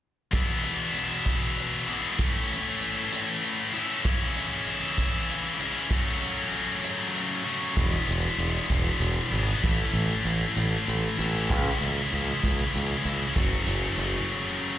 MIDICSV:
0, 0, Header, 1, 4, 480
1, 0, Start_track
1, 0, Key_signature, 4, "major"
1, 0, Tempo, 620476
1, 256, Time_signature, 6, 3, 24, 8
1, 11437, End_track
2, 0, Start_track
2, 0, Title_t, "Distorted electric guitar"
2, 0, Program_c, 0, 30
2, 242, Note_on_c, 0, 40, 65
2, 251, Note_on_c, 0, 47, 78
2, 257, Note_on_c, 0, 52, 77
2, 262, Note_on_c, 0, 56, 71
2, 268, Note_on_c, 0, 59, 75
2, 273, Note_on_c, 0, 64, 76
2, 1433, Note_off_c, 0, 40, 0
2, 1438, Note_off_c, 0, 47, 0
2, 1439, Note_off_c, 0, 64, 0
2, 1442, Note_on_c, 0, 64, 66
2, 1443, Note_off_c, 0, 56, 0
2, 1443, Note_off_c, 0, 59, 0
2, 1453, Note_on_c, 0, 59, 57
2, 1457, Note_on_c, 0, 56, 66
2, 1461, Note_off_c, 0, 52, 0
2, 1464, Note_on_c, 0, 52, 65
2, 1466, Note_on_c, 0, 47, 56
2, 1475, Note_on_c, 0, 40, 57
2, 1679, Note_off_c, 0, 59, 0
2, 1681, Note_off_c, 0, 56, 0
2, 1686, Note_off_c, 0, 47, 0
2, 1689, Note_on_c, 0, 45, 73
2, 1690, Note_off_c, 0, 40, 0
2, 1692, Note_off_c, 0, 52, 0
2, 1695, Note_on_c, 0, 52, 78
2, 1703, Note_on_c, 0, 57, 82
2, 1711, Note_on_c, 0, 61, 78
2, 1715, Note_off_c, 0, 64, 0
2, 1718, Note_on_c, 0, 64, 82
2, 2876, Note_off_c, 0, 45, 0
2, 2876, Note_off_c, 0, 64, 0
2, 2879, Note_off_c, 0, 52, 0
2, 2883, Note_off_c, 0, 57, 0
2, 2886, Note_on_c, 0, 64, 73
2, 2891, Note_off_c, 0, 61, 0
2, 2894, Note_on_c, 0, 61, 65
2, 2904, Note_on_c, 0, 57, 65
2, 2909, Note_on_c, 0, 52, 57
2, 2916, Note_on_c, 0, 45, 51
2, 3115, Note_off_c, 0, 64, 0
2, 3119, Note_off_c, 0, 45, 0
2, 3122, Note_off_c, 0, 52, 0
2, 3122, Note_on_c, 0, 49, 75
2, 3124, Note_off_c, 0, 57, 0
2, 3131, Note_on_c, 0, 52, 71
2, 3136, Note_on_c, 0, 56, 71
2, 3143, Note_off_c, 0, 61, 0
2, 3146, Note_on_c, 0, 61, 83
2, 3154, Note_on_c, 0, 64, 75
2, 4302, Note_off_c, 0, 64, 0
2, 4311, Note_on_c, 0, 64, 65
2, 4312, Note_off_c, 0, 49, 0
2, 4316, Note_off_c, 0, 52, 0
2, 4316, Note_off_c, 0, 61, 0
2, 4319, Note_off_c, 0, 56, 0
2, 4325, Note_on_c, 0, 61, 60
2, 4329, Note_on_c, 0, 56, 64
2, 4335, Note_on_c, 0, 52, 60
2, 4342, Note_on_c, 0, 49, 56
2, 4547, Note_off_c, 0, 64, 0
2, 4553, Note_off_c, 0, 61, 0
2, 4555, Note_off_c, 0, 49, 0
2, 4556, Note_off_c, 0, 56, 0
2, 4557, Note_on_c, 0, 42, 80
2, 4558, Note_off_c, 0, 52, 0
2, 4565, Note_on_c, 0, 49, 68
2, 4572, Note_on_c, 0, 54, 81
2, 4574, Note_on_c, 0, 57, 78
2, 4583, Note_on_c, 0, 61, 89
2, 4586, Note_on_c, 0, 66, 87
2, 5748, Note_off_c, 0, 42, 0
2, 5752, Note_off_c, 0, 49, 0
2, 5752, Note_off_c, 0, 66, 0
2, 5756, Note_off_c, 0, 54, 0
2, 5757, Note_off_c, 0, 57, 0
2, 5761, Note_on_c, 0, 66, 66
2, 5762, Note_off_c, 0, 61, 0
2, 5771, Note_on_c, 0, 61, 72
2, 5776, Note_on_c, 0, 57, 61
2, 5779, Note_on_c, 0, 54, 61
2, 5786, Note_on_c, 0, 49, 62
2, 5792, Note_on_c, 0, 42, 57
2, 5991, Note_off_c, 0, 66, 0
2, 5996, Note_off_c, 0, 61, 0
2, 5999, Note_off_c, 0, 57, 0
2, 6000, Note_off_c, 0, 54, 0
2, 6001, Note_off_c, 0, 42, 0
2, 6004, Note_off_c, 0, 49, 0
2, 6004, Note_on_c, 0, 40, 71
2, 6013, Note_on_c, 0, 47, 81
2, 6018, Note_on_c, 0, 52, 73
2, 6023, Note_on_c, 0, 56, 76
2, 6028, Note_on_c, 0, 59, 81
2, 6034, Note_on_c, 0, 64, 75
2, 7192, Note_off_c, 0, 40, 0
2, 7197, Note_off_c, 0, 47, 0
2, 7199, Note_off_c, 0, 59, 0
2, 7200, Note_off_c, 0, 64, 0
2, 7202, Note_off_c, 0, 56, 0
2, 7203, Note_on_c, 0, 64, 63
2, 7208, Note_on_c, 0, 59, 68
2, 7217, Note_on_c, 0, 56, 67
2, 7219, Note_off_c, 0, 52, 0
2, 7222, Note_on_c, 0, 52, 61
2, 7231, Note_on_c, 0, 47, 58
2, 7233, Note_on_c, 0, 40, 55
2, 7434, Note_off_c, 0, 59, 0
2, 7439, Note_off_c, 0, 56, 0
2, 7442, Note_off_c, 0, 47, 0
2, 7445, Note_on_c, 0, 45, 68
2, 7447, Note_off_c, 0, 40, 0
2, 7451, Note_off_c, 0, 52, 0
2, 7454, Note_on_c, 0, 52, 81
2, 7462, Note_on_c, 0, 57, 85
2, 7468, Note_on_c, 0, 61, 75
2, 7471, Note_off_c, 0, 64, 0
2, 7474, Note_on_c, 0, 64, 82
2, 8633, Note_off_c, 0, 45, 0
2, 8637, Note_off_c, 0, 52, 0
2, 8640, Note_off_c, 0, 64, 0
2, 8642, Note_off_c, 0, 57, 0
2, 8650, Note_on_c, 0, 64, 72
2, 8660, Note_off_c, 0, 61, 0
2, 8663, Note_on_c, 0, 61, 62
2, 8669, Note_on_c, 0, 57, 68
2, 8675, Note_on_c, 0, 52, 60
2, 8682, Note_on_c, 0, 45, 65
2, 8875, Note_off_c, 0, 64, 0
2, 8885, Note_off_c, 0, 52, 0
2, 8885, Note_off_c, 0, 57, 0
2, 8886, Note_off_c, 0, 45, 0
2, 8889, Note_on_c, 0, 49, 68
2, 8894, Note_on_c, 0, 52, 78
2, 8903, Note_on_c, 0, 56, 81
2, 8908, Note_off_c, 0, 61, 0
2, 8911, Note_on_c, 0, 61, 78
2, 8914, Note_on_c, 0, 64, 80
2, 10076, Note_off_c, 0, 49, 0
2, 10078, Note_off_c, 0, 52, 0
2, 10079, Note_off_c, 0, 64, 0
2, 10082, Note_off_c, 0, 56, 0
2, 10087, Note_off_c, 0, 61, 0
2, 10088, Note_on_c, 0, 64, 75
2, 10102, Note_on_c, 0, 61, 63
2, 10104, Note_on_c, 0, 56, 64
2, 10116, Note_on_c, 0, 52, 69
2, 10118, Note_on_c, 0, 49, 56
2, 10315, Note_off_c, 0, 64, 0
2, 10322, Note_off_c, 0, 61, 0
2, 10323, Note_off_c, 0, 56, 0
2, 10329, Note_off_c, 0, 52, 0
2, 10330, Note_off_c, 0, 49, 0
2, 10334, Note_on_c, 0, 42, 74
2, 10339, Note_on_c, 0, 49, 83
2, 10342, Note_on_c, 0, 54, 92
2, 10350, Note_on_c, 0, 57, 78
2, 10353, Note_on_c, 0, 61, 81
2, 10361, Note_on_c, 0, 66, 83
2, 11437, Note_off_c, 0, 42, 0
2, 11437, Note_off_c, 0, 49, 0
2, 11437, Note_off_c, 0, 54, 0
2, 11437, Note_off_c, 0, 57, 0
2, 11437, Note_off_c, 0, 61, 0
2, 11437, Note_off_c, 0, 66, 0
2, 11437, End_track
3, 0, Start_track
3, 0, Title_t, "Fingered electric bass"
3, 0, Program_c, 1, 33
3, 6012, Note_on_c, 1, 28, 68
3, 6160, Note_off_c, 1, 28, 0
3, 6257, Note_on_c, 1, 28, 71
3, 6404, Note_off_c, 1, 28, 0
3, 6485, Note_on_c, 1, 28, 68
3, 6636, Note_off_c, 1, 28, 0
3, 6732, Note_on_c, 1, 28, 72
3, 6881, Note_off_c, 1, 28, 0
3, 6963, Note_on_c, 1, 28, 75
3, 7114, Note_off_c, 1, 28, 0
3, 7212, Note_on_c, 1, 32, 82
3, 7360, Note_off_c, 1, 32, 0
3, 7459, Note_on_c, 1, 33, 78
3, 7605, Note_off_c, 1, 33, 0
3, 7686, Note_on_c, 1, 33, 71
3, 7836, Note_off_c, 1, 33, 0
3, 7931, Note_on_c, 1, 33, 72
3, 8080, Note_off_c, 1, 33, 0
3, 8174, Note_on_c, 1, 33, 74
3, 8322, Note_off_c, 1, 33, 0
3, 8418, Note_on_c, 1, 33, 76
3, 8564, Note_off_c, 1, 33, 0
3, 8656, Note_on_c, 1, 33, 83
3, 8900, Note_off_c, 1, 33, 0
3, 8900, Note_on_c, 1, 37, 79
3, 9046, Note_off_c, 1, 37, 0
3, 9137, Note_on_c, 1, 37, 73
3, 9284, Note_off_c, 1, 37, 0
3, 9382, Note_on_c, 1, 37, 76
3, 9528, Note_off_c, 1, 37, 0
3, 9623, Note_on_c, 1, 37, 78
3, 9768, Note_off_c, 1, 37, 0
3, 9868, Note_on_c, 1, 37, 78
3, 10012, Note_off_c, 1, 37, 0
3, 10097, Note_on_c, 1, 37, 85
3, 10244, Note_off_c, 1, 37, 0
3, 10339, Note_on_c, 1, 30, 78
3, 10485, Note_off_c, 1, 30, 0
3, 10577, Note_on_c, 1, 30, 71
3, 10724, Note_off_c, 1, 30, 0
3, 10812, Note_on_c, 1, 30, 72
3, 10961, Note_off_c, 1, 30, 0
3, 11437, End_track
4, 0, Start_track
4, 0, Title_t, "Drums"
4, 254, Note_on_c, 9, 42, 70
4, 257, Note_on_c, 9, 36, 91
4, 331, Note_off_c, 9, 42, 0
4, 334, Note_off_c, 9, 36, 0
4, 490, Note_on_c, 9, 42, 49
4, 568, Note_off_c, 9, 42, 0
4, 735, Note_on_c, 9, 42, 54
4, 812, Note_off_c, 9, 42, 0
4, 970, Note_on_c, 9, 42, 63
4, 976, Note_on_c, 9, 36, 59
4, 1048, Note_off_c, 9, 42, 0
4, 1053, Note_off_c, 9, 36, 0
4, 1216, Note_on_c, 9, 42, 56
4, 1294, Note_off_c, 9, 42, 0
4, 1453, Note_on_c, 9, 42, 56
4, 1530, Note_off_c, 9, 42, 0
4, 1689, Note_on_c, 9, 42, 67
4, 1695, Note_on_c, 9, 36, 92
4, 1766, Note_off_c, 9, 42, 0
4, 1772, Note_off_c, 9, 36, 0
4, 1941, Note_on_c, 9, 42, 55
4, 2019, Note_off_c, 9, 42, 0
4, 2173, Note_on_c, 9, 42, 53
4, 2251, Note_off_c, 9, 42, 0
4, 2418, Note_on_c, 9, 42, 65
4, 2495, Note_off_c, 9, 42, 0
4, 2658, Note_on_c, 9, 42, 54
4, 2735, Note_off_c, 9, 42, 0
4, 2893, Note_on_c, 9, 42, 51
4, 2970, Note_off_c, 9, 42, 0
4, 3130, Note_on_c, 9, 42, 63
4, 3134, Note_on_c, 9, 36, 98
4, 3208, Note_off_c, 9, 42, 0
4, 3211, Note_off_c, 9, 36, 0
4, 3374, Note_on_c, 9, 42, 49
4, 3451, Note_off_c, 9, 42, 0
4, 3613, Note_on_c, 9, 42, 46
4, 3690, Note_off_c, 9, 42, 0
4, 3852, Note_on_c, 9, 36, 58
4, 3853, Note_on_c, 9, 42, 61
4, 3929, Note_off_c, 9, 36, 0
4, 3930, Note_off_c, 9, 42, 0
4, 4093, Note_on_c, 9, 42, 47
4, 4171, Note_off_c, 9, 42, 0
4, 4330, Note_on_c, 9, 42, 46
4, 4407, Note_off_c, 9, 42, 0
4, 4565, Note_on_c, 9, 42, 72
4, 4569, Note_on_c, 9, 36, 91
4, 4643, Note_off_c, 9, 42, 0
4, 4647, Note_off_c, 9, 36, 0
4, 4805, Note_on_c, 9, 42, 55
4, 4882, Note_off_c, 9, 42, 0
4, 5044, Note_on_c, 9, 42, 47
4, 5121, Note_off_c, 9, 42, 0
4, 5290, Note_on_c, 9, 42, 67
4, 5368, Note_off_c, 9, 42, 0
4, 5532, Note_on_c, 9, 42, 56
4, 5609, Note_off_c, 9, 42, 0
4, 5771, Note_on_c, 9, 42, 50
4, 5848, Note_off_c, 9, 42, 0
4, 6009, Note_on_c, 9, 42, 75
4, 6010, Note_on_c, 9, 36, 91
4, 6086, Note_off_c, 9, 42, 0
4, 6087, Note_off_c, 9, 36, 0
4, 6244, Note_on_c, 9, 42, 57
4, 6322, Note_off_c, 9, 42, 0
4, 6487, Note_on_c, 9, 42, 48
4, 6565, Note_off_c, 9, 42, 0
4, 6731, Note_on_c, 9, 36, 63
4, 6732, Note_on_c, 9, 42, 65
4, 6808, Note_off_c, 9, 36, 0
4, 6810, Note_off_c, 9, 42, 0
4, 6972, Note_on_c, 9, 42, 54
4, 7049, Note_off_c, 9, 42, 0
4, 7214, Note_on_c, 9, 42, 51
4, 7292, Note_off_c, 9, 42, 0
4, 7456, Note_on_c, 9, 36, 94
4, 7461, Note_on_c, 9, 42, 70
4, 7533, Note_off_c, 9, 36, 0
4, 7538, Note_off_c, 9, 42, 0
4, 7696, Note_on_c, 9, 42, 52
4, 7773, Note_off_c, 9, 42, 0
4, 7940, Note_on_c, 9, 42, 48
4, 8017, Note_off_c, 9, 42, 0
4, 8179, Note_on_c, 9, 42, 67
4, 8257, Note_off_c, 9, 42, 0
4, 8422, Note_on_c, 9, 42, 54
4, 8499, Note_off_c, 9, 42, 0
4, 8659, Note_on_c, 9, 42, 49
4, 8736, Note_off_c, 9, 42, 0
4, 8899, Note_on_c, 9, 36, 97
4, 8903, Note_on_c, 9, 42, 68
4, 8976, Note_off_c, 9, 36, 0
4, 8981, Note_off_c, 9, 42, 0
4, 9145, Note_on_c, 9, 42, 53
4, 9223, Note_off_c, 9, 42, 0
4, 9384, Note_on_c, 9, 42, 53
4, 9461, Note_off_c, 9, 42, 0
4, 9620, Note_on_c, 9, 36, 65
4, 9627, Note_on_c, 9, 42, 70
4, 9698, Note_off_c, 9, 36, 0
4, 9704, Note_off_c, 9, 42, 0
4, 9859, Note_on_c, 9, 42, 53
4, 9936, Note_off_c, 9, 42, 0
4, 10093, Note_on_c, 9, 42, 57
4, 10170, Note_off_c, 9, 42, 0
4, 10336, Note_on_c, 9, 42, 78
4, 10337, Note_on_c, 9, 36, 100
4, 10413, Note_off_c, 9, 42, 0
4, 10414, Note_off_c, 9, 36, 0
4, 10570, Note_on_c, 9, 42, 59
4, 10648, Note_off_c, 9, 42, 0
4, 10813, Note_on_c, 9, 42, 53
4, 10891, Note_off_c, 9, 42, 0
4, 11437, End_track
0, 0, End_of_file